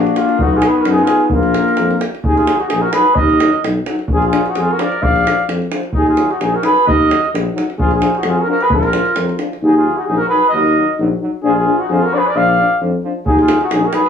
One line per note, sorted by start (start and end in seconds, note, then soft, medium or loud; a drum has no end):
0.00 0.38 A#3 medium
0.00 0.18 D4 medium
0.00 0.40 D4 medium
0.00 0.19 F#4 medium
0.07 davul high soft
0.16 0.42 D4 medium
0.16 0.44 F4 medium
0.16 davul high medium
0.29 davul high soft
0.38 0.66 B1 medium
0.38 1.34 B3 medium
0.38 1.35 D#4 medium
0.38 0.55 D#4 medium
0.38 davul low loud
0.42 0.58 F#4 medium
0.54 0.65 F4 medium
0.54 0.69 G#4 medium
0.62 0.79 G#4 medium
0.62 davul high medium
0.68 0.82 B4 medium
0.77 0.87 F#4 medium
0.77 0.89 A#4 medium
0.85 0.99 F#2 loud
0.85 davul high medium
0.90 1.00 D#4 medium
0.90 1.01 G#4 medium
0.98 1.22 F4 medium
0.98 davul high soft
1.05 1.24 G#4 medium
1.05 davul high medium
1.20 davul high soft
1.30 1.58 A#1 medium
1.30 2.07 A#3 medium
1.30 2.07 D4 medium
1.30 davul low medium
1.36 1.99 F4 medium
1.36 2.00 A#4 medium
1.43 davul high soft
1.54 davul high medium
1.68 davul high soft
1.77 1.92 F2 medium
1.77 davul high medium
1.91 davul high soft
2.01 davul high medium
2.15 davul high soft
2.24 2.51 D#2 medium
2.24 2.35 D#4 medium
2.24 2.37 G#4 medium
2.24 davul low medium
2.36 2.59 F4 medium
2.36 2.61 G#4 medium
2.36 davul high soft
2.47 2.58 F#3 medium
2.47 2.57 D#4 medium
2.47 davul high medium
2.57 2.69 D#4 medium
2.57 2.70 F#4 medium
2.57 davul high soft
2.68 2.85 A#1 medium
2.68 2.84 D#4 medium
2.68 2.83 G#4 medium
2.68 davul high medium
2.81 2.92 F#4 medium
2.81 2.93 A#4 medium
2.93 3.04 F#3 medium
2.93 3.04 D#4 medium
2.93 3.19 G#4 medium
2.93 3.17 B4 medium
2.93 davul high medium
3.05 davul high soft
3.15 3.64 A#4 medium
3.15 3.62 D#5 medium
3.15 davul low loud
3.19 3.44 D#2 medium
3.30 davul high soft
3.40 3.50 F#3 medium
3.40 3.50 D#4 medium
3.40 davul high medium
3.53 davul high soft
3.64 3.77 B1 medium
3.64 davul high medium
3.86 3.96 F#3 medium
3.86 3.97 D#4 medium
3.86 davul high medium
3.99 davul high soft
4.08 4.35 A#1 medium
4.08 davul low medium
4.13 4.25 F4 medium
4.13 4.23 G#4 medium
4.22 4.46 G#4 medium
4.22 davul high soft
4.27 4.46 F4 medium
4.33 4.42 F3 medium
4.33 4.42 D4 medium
4.33 davul high medium
4.46 4.62 D#4 medium
4.46 4.59 F#4 medium
4.46 davul high soft
4.55 4.69 F2 medium
4.55 4.73 G#4 medium
4.55 davul high medium
4.60 4.74 F4 medium
4.71 4.83 F#4 medium
4.71 4.82 A#4 medium
4.78 4.88 F3 medium
4.78 4.87 D4 medium
4.78 5.04 D5 medium
4.78 davul high medium
4.82 5.05 A#4 medium
4.92 davul high soft
5.02 5.27 A#1 medium
5.02 5.49 D5 loud
5.02 5.48 F5 medium
5.02 davul low medium
5.16 davul high soft
5.24 5.34 F3 medium
5.24 5.33 D4 medium
5.24 davul high medium
5.48 5.61 F2 medium
5.48 davul high medium
5.62 davul high soft
5.72 5.81 F3 medium
5.72 5.82 D4 soft
5.72 davul high medium
5.83 davul high soft
5.93 6.21 D#2 medium
5.93 6.06 D#4 medium
5.93 davul low medium
5.97 6.07 G#4 medium
6.06 6.32 F4 medium
6.06 6.32 G#4 medium
6.06 davul high soft
6.17 6.27 F#3 medium
6.17 6.28 D#4 medium
6.17 davul high medium
6.30 6.40 D#4 medium
6.30 6.42 F#4 medium
6.30 davul high soft
6.40 6.54 A#1 medium
6.40 6.57 D#4 medium
6.40 6.56 G#4 medium
6.40 davul high medium
6.54 6.64 F#4 medium
6.54 6.66 A#4 medium
6.62 6.73 F#3 medium
6.62 6.72 D#4 medium
6.62 6.86 G#4 medium
6.62 6.87 B4 loud
6.62 davul high medium
6.77 davul high soft
6.86 7.12 D#2 medium
6.86 7.30 A#4 medium
6.86 7.30 D#5 loud
6.86 davul low medium
7.02 davul high soft
7.09 7.18 F#3 medium
7.09 7.18 D#4 medium
7.09 davul high medium
7.25 davul high soft
7.34 7.46 A#1 loud
7.34 davul high medium
7.54 7.64 F#3 medium
7.54 7.63 D#4 medium
7.54 davul high medium
7.70 davul high soft
7.78 8.03 A#1 medium
7.78 7.91 F4 medium
7.78 7.90 G#4 medium
7.78 davul low medium
7.91 8.19 F4 medium
7.91 8.19 G#4 medium
7.91 davul high soft
8.01 8.10 F3 medium
8.01 8.10 D4 medium
8.01 davul high medium
8.15 8.26 D#4 medium
8.15 8.26 F#4 medium
8.15 davul high soft
8.23 8.37 F2 loud
8.23 davul high medium
8.28 8.39 F4 medium
8.28 8.43 G#4 medium
8.38 8.48 F#4 medium
8.38 8.49 A#4 medium
8.47 8.57 F3 medium
8.47 8.56 D4 medium
8.47 8.64 F#4 medium
8.47 8.64 A#4 loud
8.61 8.71 G#4 medium
8.61 8.71 B4 medium
8.61 davul high soft
8.70 8.96 A#1 medium
8.70 9.36 F4 medium
8.70 9.36 A#4 loud
8.70 davul low loud
8.83 davul high soft
8.92 9.01 F3 soft
8.92 9.01 D4 medium
8.92 davul high medium
9.05 davul high soft
9.16 9.29 F2 medium
9.16 davul high medium
9.29 davul high soft
9.39 9.48 F3 medium
9.39 9.48 D4 medium
9.39 davul high medium
9.53 davul high soft
9.61 9.87 D#2 medium
9.61 9.72 F#3 medium
9.61 9.70 D#4 medium
9.61 9.74 G#4 medium
9.65 9.75 D#4 medium
9.74 9.99 F4 medium
9.74 9.99 G#4 medium
9.84 9.94 F#3 soft
9.84 9.93 D#4 medium
9.97 10.07 D#4 medium
9.97 10.07 F#4 medium
10.05 10.21 A#1 medium
10.05 10.17 F#3 medium
10.05 10.20 D#4 medium
10.05 10.17 D#4 medium
10.05 10.16 G#4 medium
10.17 10.30 F#4 medium
10.17 10.28 A#4 medium
10.29 10.40 F#3 medium
10.29 10.39 D#4 medium
10.29 10.51 G#4 medium
10.29 10.48 B4 loud
10.49 10.62 F#3 medium
10.49 10.62 D#4 medium
10.49 10.95 A#4 medium
10.49 10.93 D#5 loud
10.54 10.79 D#2 medium
10.75 10.85 F#3 medium
10.75 10.85 D#4 medium
10.98 11.12 A#1 medium
10.98 11.08 F#3 medium
10.98 11.07 D#4 medium
11.20 11.30 F#3 medium
11.20 11.29 D#4 medium
11.43 11.69 A#1 medium
11.43 11.53 F3 medium
11.43 11.53 D4 medium
11.43 11.55 G#4 medium
11.48 11.57 F4 medium
11.55 11.79 F4 medium
11.55 11.77 G#4 medium
11.66 11.76 F3 medium
11.66 11.75 D4 medium
11.78 11.88 F#4 medium
11.83 11.91 D#4 medium
11.89 12.02 F2 loud
11.89 11.99 F3 medium
11.89 11.99 D4 medium
11.89 12.04 G#4 medium
11.93 12.08 F4 medium
12.02 12.17 F#4 medium
12.02 12.15 A#4 loud
12.11 12.21 F3 medium
12.11 12.21 D4 medium
12.11 12.20 D5 loud
12.16 12.30 G#4 medium
12.16 12.19 A#4 medium
12.16 12.28 B4 medium
12.27 12.38 A#4 medium
12.27 12.38 D5 loud
12.35 12.60 A#1 loud
12.35 12.44 F3 medium
12.35 12.45 D4 medium
12.35 12.82 D5 medium
12.35 12.81 F5 loud
12.57 12.66 F3 medium
12.57 12.68 D4 medium
12.79 12.94 F2 medium
12.79 12.89 F3 medium
12.79 12.91 D4 medium
13.03 13.12 F3 medium
13.03 13.14 D4 medium
13.25 13.52 D#2 medium
13.25 13.34 F#3 medium
13.25 13.38 D#4 medium
13.25 13.36 D#4 medium
13.25 13.38 G#4 medium
13.25 davul low medium
13.39 13.61 F4 medium
13.39 13.60 G#4 medium
13.39 davul high soft
13.48 13.58 F#3 medium
13.48 13.58 D#4 medium
13.48 davul high medium
13.61 13.73 D#4 medium
13.61 13.74 F#4 medium
13.61 davul high soft
13.70 13.85 A#1 medium
13.70 13.80 F#3 medium
13.70 13.80 D#4 medium
13.70 13.87 D#4 medium
13.70 13.88 G#4 medium
13.70 davul high medium
13.85 13.95 F#4 medium
13.85 13.96 A#4 medium
13.93 14.03 F#3 medium
13.93 14.03 D#4 medium
13.93 14.09 G#4 medium
13.93 14.09 B4 loud
13.93 davul high medium